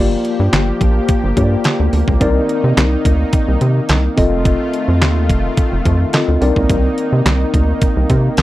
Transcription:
0.00 0.16 G1 loud
0.00 2.19 F3 medium
0.00 1.34 A#3 medium
0.00 4.13 A#3 medium
0.00 1.34 F4 medium
0.00 1.34 G4 medium
0.00 2.19 G4 medium
0.00 1.35 D5 medium
0.25 closed hi-hat medium
0.40 0.49 G2 loud
0.53 0.72 G1 loud
0.53 snare loud
0.53 clap medium
0.53 closed hi-hat medium
0.81 1.00 A#1 loud
0.81 kick medium
0.81 closed hi-hat medium
1.09 kick loud
1.09 closed hi-hat loud
1.24 1.33 G1 loud
1.37 1.56 G2 medium
1.37 2.21 A#3 medium
1.37 2.21 F4 soft
1.37 2.21 G4 soft
1.37 1.44 C#5 soft
1.37 kick medium
1.37 closed hi-hat medium
1.44 2.21 D5 medium
1.64 snare loud
1.64 clap medium
1.64 closed hi-hat medium
1.80 1.89 D2 loud
1.93 2.03 D2 medium
1.93 open hi-hat medium
2.08 2.17 C#2 medium
2.08 kick medium
2.20 2.40 C2 loud
2.20 4.15 D#3 medium
2.20 4.13 C4 medium
2.20 4.13 D#4 medium
2.20 4.15 D#4 medium
2.20 4.14 A#4 medium
2.20 4.14 D5 medium
2.20 kick loud
2.20 closed hi-hat medium
2.49 closed hi-hat medium
2.64 2.73 C3 medium
2.77 2.97 C2 loud
2.77 snare loud
2.77 clap medium
2.77 closed hi-hat loud
3.05 3.25 D2 medium
3.05 kick loud
3.05 closed hi-hat medium
3.33 kick loud
3.33 closed hi-hat medium
3.48 3.57 C2 loud
3.61 3.81 C3 medium
3.61 closed hi-hat medium
3.89 4.09 C2 medium
3.89 snare loud
3.89 clap loud
3.89 closed hi-hat medium
4.16 4.56 F1 loud
4.16 6.39 D#3 medium
4.16 6.39 A3 medium
4.16 6.09 C4 medium
4.16 6.09 F4 medium
4.16 6.39 F4 medium
4.16 6.10 A4 medium
4.16 6.10 D#5 medium
4.16 kick medium
4.16 open hi-hat medium
4.45 kick loud
4.45 closed hi-hat medium
4.74 closed hi-hat medium
4.88 5.03 F2 loud
5.02 5.31 D#2 loud
5.02 snare loud
5.02 clap medium
5.02 closed hi-hat loud
5.29 5.49 F1 loud
5.29 kick loud
5.29 closed hi-hat medium
5.57 kick loud
5.57 closed hi-hat medium
5.72 5.81 F1 medium
5.85 6.05 F2 loud
5.85 kick medium
5.85 closed hi-hat medium
6.13 6.40 C4 soft
6.13 6.42 F4 soft
6.13 6.42 A4 soft
6.13 6.42 D#5 medium
6.13 snare loud
6.13 clap medium
6.13 closed hi-hat medium
6.28 6.37 D2 loud
6.41 6.52 C2 loud
6.41 8.42 D#3 medium
6.41 8.42 A#3 medium
6.41 8.42 C4 medium
6.41 6.48 D4 medium
6.41 8.42 D#4 medium
6.41 8.42 A#4 medium
6.41 8.42 D5 medium
6.41 open hi-hat medium
6.48 8.42 D#4 medium
6.56 6.66 C#2 medium
6.56 kick medium
6.70 6.89 C2 loud
6.70 kick loud
6.70 closed hi-hat medium
6.98 closed hi-hat medium
7.13 7.22 C3 medium
7.26 7.45 C2 medium
7.26 snare loud
7.26 clap medium
7.26 closed hi-hat loud
7.54 7.73 D2 medium
7.54 kick medium
7.54 closed hi-hat medium
7.82 kick loud
7.82 closed hi-hat loud
7.97 8.06 C2 loud
8.10 8.29 C3 loud
8.10 kick medium
8.10 closed hi-hat medium
8.37 8.42 C2 loud
8.37 snare loud
8.37 clap medium
8.37 closed hi-hat medium

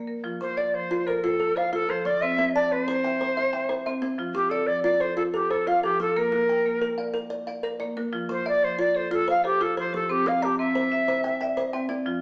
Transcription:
0.00 0.24 A#3 medium
0.07 0.41 A#4 medium
0.24 0.57 F3 medium
0.24 0.74 F4 medium
0.41 0.74 F3 medium
0.41 0.59 C5 medium
0.57 0.76 D5 medium
0.57 1.07 D5 medium
0.74 1.07 F3 medium
0.74 1.08 C5 medium
0.91 1.23 F4 medium
1.06 1.40 A4 medium
1.06 1.25 A#4 medium
1.06 1.56 C5 medium
1.23 1.56 F4 medium
1.23 1.58 A4 medium
1.40 1.88 A4 medium
1.56 2.06 A4 medium
1.56 2.06 C5 medium
1.56 1.73 F5 medium
1.73 2.05 F4 medium
1.73 2.06 F4 medium
1.73 1.91 A4 medium
1.89 2.22 F3 medium
1.89 2.38 A4 medium
1.89 2.07 C5 medium
2.05 2.38 F3 medium
2.05 2.39 F4 medium
2.05 2.23 D5 medium
2.21 2.55 C4 medium
2.21 2.71 C5 medium
2.21 2.54 E5 loud
2.38 2.71 C4 medium
2.54 2.73 D5 medium
2.54 3.04 A5 medium
2.54 3.05 A5 medium
2.72 3.04 C4 medium
2.72 2.86 B4 medium
2.86 4.03 C5 medium
2.86 3.20 C5 medium
3.04 3.37 E5 medium
3.04 3.52 G5 medium
3.21 3.54 C5 medium
3.37 3.85 E5 medium
3.53 4.02 E5 medium
3.53 4.03 G5 medium
3.69 4.02 C5 medium
3.69 4.01 C5 medium
3.86 4.19 C4 medium
3.86 4.35 E5 medium
4.02 4.35 C4 medium
4.02 4.35 C5 medium
4.18 4.52 F3 medium
4.18 4.68 F4 medium
4.34 4.68 F3 medium
4.34 4.51 G4 medium
4.49 4.68 A4 medium
4.49 5.01 D5 medium
4.67 5.01 F3 medium
4.67 4.82 D5 loud
4.83 5.16 F4 medium
4.83 5.02 D5 medium
5.00 5.34 A4 medium
5.00 5.49 C5 medium
5.00 5.16 C5 medium
5.16 5.50 F4 medium
5.16 5.22 A4 medium
5.34 5.52 G4 medium
5.34 5.82 A4 medium
5.50 5.68 A4 medium
5.50 5.83 A4 medium
5.50 6.00 C5 medium
5.67 5.99 F4 medium
5.67 6.00 F4 medium
5.67 5.83 F5 medium
5.83 6.16 F3 medium
5.83 5.99 G4 medium
5.83 6.33 A4 medium
6.00 6.33 F3 medium
6.00 6.33 F4 medium
6.00 6.19 A4 medium
6.16 6.49 A#3 medium
6.16 6.66 A#4 medium
6.16 7.15 A#4 medium
6.32 6.65 A#3 medium
6.49 6.98 G5 medium
6.66 6.99 A#3 medium
6.81 7.12 A#4 medium
6.98 7.31 D5 medium
6.98 7.46 F5 medium
7.14 7.47 A#4 medium
7.30 7.78 D5 medium
7.47 7.97 D5 medium
7.47 7.96 F5 medium
7.63 7.96 A#4 medium
7.80 8.13 A#3 medium
7.80 8.29 D5 medium
7.97 8.30 A#3 medium
7.97 8.30 A#4 medium
8.13 8.46 F3 medium
8.13 8.62 F4 medium
8.29 8.62 F3 medium
8.29 8.46 C5 loud
8.46 8.95 D5 medium
8.46 8.65 D5 loud
8.46 8.95 E5 medium
8.62 8.95 F3 medium
8.62 8.81 C5 loud
8.79 9.10 F4 medium
8.79 8.97 D5 medium
8.95 9.28 A4 medium
8.95 9.12 C5 medium
9.11 9.59 F4 medium
9.11 9.44 F4 medium
9.11 9.28 A4 medium
9.28 9.43 C5 medium
9.28 9.44 F5 medium
9.44 9.92 G4 medium
9.44 9.64 G4 medium
9.44 9.77 A4 medium
9.44 9.76 C5 medium
9.61 10.10 F4 medium
9.61 9.94 F4 medium
9.61 9.78 A4 loud
9.77 10.10 F3 medium
9.77 10.26 C5 medium
9.77 9.93 C5 medium
9.93 10.26 F3 medium
9.93 10.26 G4 medium
9.93 10.13 A4 medium
10.09 10.42 C4 medium
10.09 10.29 G4 medium
10.09 10.59 C5 medium
10.26 10.59 C4 medium
10.26 10.45 F5 medium
10.42 10.58 G4 medium
10.42 10.91 A5 medium
10.42 10.92 A#5 medium
10.59 10.92 C4 medium
10.59 11.86 E5 medium
10.75 11.07 C5 medium
10.92 11.24 E5 medium
11.08 11.56 C5 medium
11.08 11.41 C5 medium
11.24 11.39 G5 medium
11.41 11.88 D5 medium
11.41 11.74 E5 medium
11.41 11.72 G5 medium
11.57 11.90 C5 medium
11.57 12.06 C5 medium
11.73 12.06 C4 medium
11.73 12.21 G5 medium
11.89 12.21 C4 medium
11.89 12.21 D5 medium
12.06 12.21 F3 medium
12.06 12.21 F4 medium

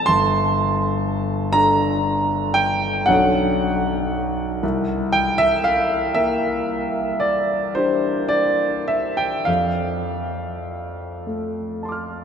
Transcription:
0.00 0.10 A5 loud
0.06 3.03 G1 medium
0.06 1.54 C6 loud
1.53 3.03 D4 medium
1.53 3.03 A4 medium
1.53 2.55 A#5 loud
2.54 3.06 G5 loud
3.06 4.60 B1 medium
3.06 4.59 F#3 soft
3.06 4.60 C#4 soft
3.06 4.60 D4 soft
3.06 4.60 A4 soft
3.06 3.59 F#5 medium
4.63 9.43 C2 medium
5.12 5.39 G5 loud
5.38 5.65 E5 loud
5.64 6.16 F5 loud
6.15 8.76 A#3 medium
6.15 7.21 E5 loud
7.20 7.74 D5 medium
7.75 9.44 D4 soft
7.75 9.44 G4 soft
7.75 8.31 C5 medium
8.29 8.87 D5 medium
8.88 9.17 E5 medium
9.17 9.47 G5 medium
9.45 12.24 F2 soft
9.45 12.24 F5 medium
11.27 12.24 A3 soft
11.83 12.24 A5 soft
11.83 12.24 C6 soft
11.89 12.24 D6 soft
11.89 12.24 F6 soft

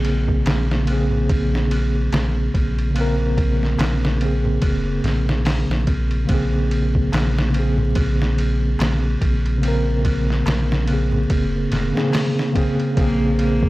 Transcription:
0.00 0.43 A#1 loud
0.00 0.81 C#3 medium
0.00 0.83 A#3 medium
0.00 0.84 C4 medium
0.00 0.86 G#4 medium
0.05 ride medium
0.28 kick medium
0.46 2.09 A#1 loud
0.46 snare loud
0.46 ride medium
0.46 darbuka tek medium
0.71 snare medium
0.83 2.90 C#3 medium
0.83 2.91 A#3 medium
0.83 ride medium
0.90 2.93 C4 medium
0.90 2.94 G#4 medium
1.11 darbuka dum medium
1.29 kick loud
1.29 ride medium
1.55 snare soft
1.71 ride medium
2.12 2.50 A#1 medium
2.12 snare loud
2.12 ride medium
2.12 darbuka tek medium
2.54 3.76 A#1 medium
2.54 kick medium
2.54 ride medium
2.78 ride soft
2.91 4.14 C#3 medium
2.91 4.16 A#3 medium
2.96 4.18 C4 medium
2.96 ride medium
3.01 4.19 A#4 medium
3.37 kick medium
3.37 ride medium
3.63 snare soft
3.78 4.59 A#1 loud
3.78 snare loud
3.78 ride medium
3.78 darbuka tek medium
4.05 snare medium
4.15 6.22 C#3 medium
4.15 6.24 A#3 medium
4.21 6.25 C4 medium
4.21 ride medium
4.25 6.27 G#4 medium
4.45 darbuka dum medium
4.62 5.00 F1 medium
4.62 kick medium
4.62 ride medium
5.03 5.65 A#1 medium
5.03 snare soft
5.03 ride medium
5.03 darbuka dum medium
5.29 snare medium
5.45 snare loud
5.45 open hi-hat medium
5.45 darbuka tek medium
5.69 6.25 A#1 medium
5.69 snare soft
5.87 kick medium
5.87 ride medium
6.11 ride soft
6.24 7.48 C#3 medium
6.24 7.49 A#3 medium
6.29 7.09 A#1 loud
6.29 7.51 C4 medium
6.29 kick loud
6.29 ride medium
6.34 7.52 G#4 medium
6.71 ride medium
6.95 kick medium
7.12 8.76 A#1 loud
7.12 snare loud
7.12 ride medium
7.12 darbuka tek medium
7.39 snare medium
7.50 9.56 C#3 medium
7.50 9.58 A#3 medium
7.54 9.59 C4 medium
7.54 ride medium
7.59 9.61 G#4 medium
7.78 darbuka dum medium
7.95 kick loud
7.95 ride medium
8.22 snare soft
8.38 ride medium
8.79 9.17 A#1 medium
8.79 snare loud
8.79 ride medium
8.79 darbuka tek medium
9.21 10.43 A#1 medium
9.21 kick medium
9.21 ride medium
9.46 ride soft
9.58 10.81 C#3 medium
9.58 10.83 A#3 medium
9.63 10.84 C4 medium
9.63 ride medium
9.68 10.86 A#4 medium
10.05 kick medium
10.05 ride medium
10.30 snare soft
10.46 11.26 A#1 loud
10.46 snare loud
10.46 ride medium
10.46 darbuka tek medium
10.72 snare medium
10.84 11.88 C#3 medium
10.84 11.89 A#3 medium
10.84 ride medium
10.90 11.91 C4 medium
10.90 11.93 G#4 medium
11.12 darbuka dum medium
11.30 11.67 F1 medium
11.30 kick medium
11.30 ride medium
11.71 11.92 F1 medium
11.71 snare soft
11.71 ride medium
11.71 darbuka dum medium
11.92 12.49 C#3 medium
11.92 12.50 A#3 medium
11.92 12.50 C4 medium
11.97 12.51 G#4 medium
11.97 snare medium
12.13 snare loud
12.13 open hi-hat medium
12.13 darbuka tek medium
12.39 snare soft
12.52 12.90 C#3 medium
12.52 12.91 A#3 medium
12.52 12.92 C4 medium
12.52 kick medium
12.52 ride medium
12.57 12.93 G#4 medium
12.80 ride soft
12.91 13.69 C#3 medium
12.91 13.69 A#3 medium
12.97 13.69 A#1 medium
12.97 13.69 A#3 medium
12.97 13.35 A#3 medium
12.97 13.69 C4 medium
12.97 13.69 G#4 medium
12.97 13.69 C5 medium
12.97 kick loud
12.97 ride medium
13.39 13.69 A#3 medium
13.39 ride medium
13.63 kick medium

